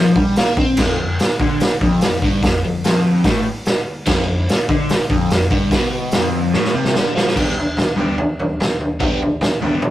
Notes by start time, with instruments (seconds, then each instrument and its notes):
Already playing: overdriven electric guitar F3
0.16 overdriven electric guitar G3, kick
0.36 overdriven electric guitar A#3, snare, open hi-hat
0.57 overdriven electric guitar C4, kick
0.77 overdriven electric guitar F2, kick, snare, crash
1.01 overdriven electric guitar F2
1.19 snare, open hi-hat
1.40 overdriven electric guitar D3, kick
1.60 muted overdriven electric guitar stroke, snare, open hi-hat
1.81 overdriven electric guitar F2, kick
2.01 overdriven electric guitar F2, snare, open hi-hat
2.22 overdriven electric guitar G2, kick
2.43 overdriven electric guitar F2, kick, snare, open hi-hat
2.65 overdriven electric guitar F2
2.84 overdriven electric guitar F2, snare, open hi-hat
3.24 overdriven electric guitar A2, kick, snare, open hi-hat
3.65 snare, open hi-hat
4.06 overdriven electric guitar F2, kick, snare, crash
4.28 overdriven electric guitar F2
4.49 snare, open hi-hat
4.69 overdriven electric guitar D3, kick
4.89 muted overdriven electric guitar stroke, snare, open hi-hat
5.10 overdriven electric guitar F2, kick
5.30 overdriven electric guitar F2, snare, open hi-hat
5.51 overdriven electric guitar G2, kick
5.71 overdriven electric guitar B2, kick, snare, open hi-hat
6.11 overdriven electric guitar F2, snare, open hi-hat
6.54 overdriven electric guitar A2, snare
6.64 snare
6.75 overdriven electric guitar C3
6.85 snare
6.95 overdriven electric guitar D3, snare
7.16 overdriven electric guitar F3, snare
7.28 snare
7.35 overdriven electric guitar G2 D3 G3 B3 D4 G4, kick, floor tom, crash
7.58 floor tom
7.77 snare, floor tom
7.96 overdriven electric guitar G2 D3 G3 B3 D4 G4, floor tom
8.18 floor tom
8.39 floor tom
8.60 snare, floor tom
8.81 floor tom
9.00 overdriven electric guitar G2 D3 G3 B3 D4 G4, kick, floor tom
9.22 floor tom
9.41 snare, floor tom
9.62 overdriven electric guitar G2 D3 G3 B3 D4 G4, floor tom
9.82 floor tom